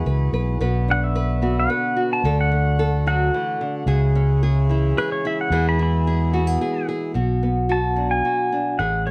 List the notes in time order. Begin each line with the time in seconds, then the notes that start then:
Already playing: E3 G#3 E4 F#4 G#4
0.06 C#2 B4
0.33 B1 B4
0.61 B1 B2 D3 B3 B4
0.88 D4 F#5
1.04 E5
1.15 B4
1.42 B3 F#4
1.60 F#5
1.70 B4
1.96 F#4
2.13 A5
2.24 D2 D3 A3 A4
2.41 F#5
2.51 A3
2.79 A4
3.06 F#3 F#4 F#5
3.34 E3
3.61 D3
3.86 C#2 C#3 G#3 E4 G#4
4.15 C#4
4.43 G#4
4.69 E3 E4
4.98 G#4 B4
5.12 C#5
5.25 E4 E5
5.41 F#5
5.50 E2 B2 E3 E4 G#4
5.69 B5
5.79 E4 B5
6.07 G#4
6.33 B3 F#4
6.47 G#4
6.61 G#4
6.89 G#4
7.14 B1 B2 F#4
7.43 B3
7.69 F#4 A5
7.96 F#3 D4
8.11 G#5
8.25 F#4
8.52 D4
8.79 A1 A2 G#4 F#5
9.06 A3 C#5